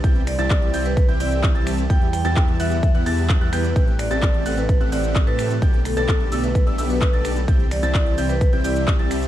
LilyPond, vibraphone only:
\new Staff \with { instrumentName = "Vibraphone" } { \time 4/4 \key c \lydian \tempo 4 = 129 r8 d''4~ d''16 b'8 r16 d''8 r4 | g''8 g''16 g''16 r8 e''16 e''16 r4. b'8 | r8 d''4~ d''16 b'8 r16 d''8 r16 b'8 r16 | r8 a'16 a'16 r8. b'8 r8 b'8. r8 |
r8 d''4~ d''16 b'8 r16 d''8 r4 | }